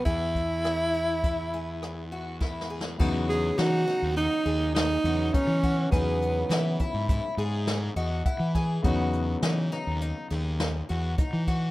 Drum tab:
CC |------------------------------|x-----------------------------|------------------------------|------------------------------|
HH |x--x--x--x--x--x--x--x--------|---x--x--x--x--x--x--x--x--x--|x--x--x--x--x--x--x--x--x--x--|x--x--x--x--x--x--x--x--x--x--|
SD |------r-----------r-----o-o-o-|---o--o--o--------o-----------|------o-----------o--------o--|------o--o-----o--o--------o--|
BD |o--o--------o-----------o-----|o-----------------------o--o--|o--------o--o-----------o--o--|o-----------------------o--o--|